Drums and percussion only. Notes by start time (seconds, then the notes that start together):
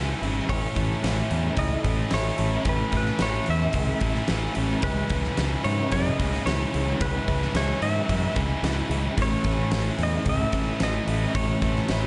0.23 open hi-hat
0.49 kick, open hi-hat
0.76 kick, open hi-hat
1.04 snare, open hi-hat
1.31 open hi-hat
1.57 kick, open hi-hat
1.85 kick, open hi-hat
2.11 snare, open hi-hat
2.38 open hi-hat
2.65 kick, open hi-hat
2.92 kick, open hi-hat
3.06 snare
3.19 snare, open hi-hat
3.46 open hi-hat
3.73 kick, open hi-hat
4.00 kick, open hi-hat
4.15 snare
4.28 snare, open hi-hat
4.55 open hi-hat
4.82 kick, open hi-hat
5.10 kick, open hi-hat
5.24 snare
5.37 snare, open hi-hat
5.64 open hi-hat
5.92 kick, open hi-hat
6.20 kick, open hi-hat
6.34 snare
6.47 snare, open hi-hat
6.74 open hi-hat
7.01 kick, open hi-hat
7.28 kick, open hi-hat
7.42 snare
7.55 snare, open hi-hat
7.82 open hi-hat
8.09 kick, open hi-hat
8.36 kick, open hi-hat
8.64 snare, open hi-hat
8.91 open hi-hat
9.18 kick, open hi-hat
9.44 kick, open hi-hat
9.71 snare, open hi-hat
9.99 open hi-hat
10.26 kick, open hi-hat
10.52 kick, open hi-hat
10.80 snare, open hi-hat
11.08 open hi-hat
11.35 kick, open hi-hat
11.62 kick, open hi-hat
11.76 snare
11.88 snare, open hi-hat